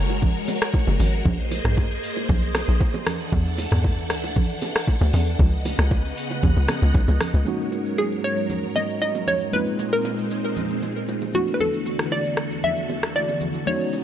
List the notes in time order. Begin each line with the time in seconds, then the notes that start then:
Already playing: F#1 G#3 F#4 A#4 C#5
0.10 high bongo, shaker
0.22 kick, low conga, shaker
0.35 shaker
0.48 open hi-hat, low bongo, shaker
0.62 cross-stick, shaker
0.74 kick, high bongo, shaker
0.87 F#1, low bongo, shaker
1.00 G#1, open hi-hat, low conga, shaker
1.13 shaker
1.25 A#1 A#3 G#4 C5 D#5, kick, low conga, shaker
1.39 shaker
1.51 open hi-hat, high bongo, low bongo, shaker
1.65 A#1, cross-stick, mid tom, low bongo, shaker
1.77 kick, high bongo, shaker
1.91 shaker
2.03 open hi-hat, shaker
2.17 high bongo, shaker
2.29 B1, kick, low conga, shaker
2.42 shaker
2.55 cross-stick, open hi-hat, low bongo, shaker
2.68 A#1, shaker
2.81 kick, high bongo, shaker
2.94 low bongo, shaker
3.06 E3 D4 A4 F#5, cross-stick, open hi-hat, low conga, shaker
3.20 shaker
3.32 E2, kick, low conga, shaker
3.46 shaker
3.58 open hi-hat, high bongo, low bongo, shaker
3.72 E2, cross-stick, mid tom, low bongo, shaker
3.84 kick, high bongo, shaker
3.98 shaker
4.10 D2, cross-stick, open hi-hat, shaker
4.24 high bongo, shaker
4.36 kick, low conga, shaker
4.49 shaker
4.62 open hi-hat, low bongo, shaker
4.76 cross-stick, shaker
4.88 kick, high bongo, shaker
5.01 D2, low bongo, shaker
5.13 E2, open hi-hat, low conga, shaker
5.27 shaker
5.39 C#2 C#3 B3 D#5 F#5, kick, low conga, shaker
5.53 shaker
5.65 open hi-hat, high bongo, low bongo, shaker
5.79 C#2, cross-stick, low bongo, shaker
5.91 kick, high bongo, shaker
6.05 shaker
6.17 open hi-hat, shaker
6.30 high bongo, shaker
6.43 D#2, kick, low conga, shaker
6.56 C#2, shaker
6.68 cross-stick, open hi-hat, low bongo, shaker
6.82 C#2, shaker
6.94 B1, kick, high bongo, shaker
7.08 C#2, low bongo, shaker
7.20 cross-stick, open hi-hat, low conga, shaker
7.34 C#2, shaker
7.45 G#2 F#3 G#3 A#3 C#4 D#4 F#4 A#4 C#5, low conga, shaker
7.60 shaker
7.72 high bongo, shaker
7.86 shaker
7.98 G#4, high bongo, shaker
8.12 shaker
8.24 C#5, shaker
8.37 shaker
8.50 low conga, shaker
8.63 shaker
8.76 D#5, low bongo, shaker
8.89 shaker
9.02 D#5, high bongo, shaker
9.15 low bongo, shaker
9.27 C#5, low conga, shaker
9.41 shaker
9.52 A#2 G#3 A#3 C4 D#4 F4 B4, low conga, shaker
9.67 shaker
9.79 high bongo, shaker
9.93 A#4, shaker
10.05 high bongo, shaker
10.19 shaker
10.31 shaker
10.44 shaker
10.57 low conga, shaker
10.70 shaker
10.82 low bongo, shaker
10.96 shaker
11.08 high bongo, shaker
11.22 low bongo, shaker
11.33 E2 D3 A3 B3 D4 E4 F#4 A4, low conga, shaker
11.47 shaker
11.54 B4
11.60 A4, low conga, shaker
11.74 shaker
11.86 high bongo, shaker
11.99 cross-stick, shaker
12.12 D5, high bongo, shaker
12.25 shaker
12.37 cross-stick, shaker
12.51 shaker
12.63 E5, low conga, shaker
12.77 shaker
12.89 low bongo, shaker
13.03 cross-stick, shaker
13.15 D5, high bongo, shaker
13.29 low bongo, shaker
13.41 low conga, shaker
13.54 shaker
13.66 C#3 G#3 B3 C#4 D#4 F#4 C#5, low conga, shaker
13.81 shaker
13.93 high bongo, shaker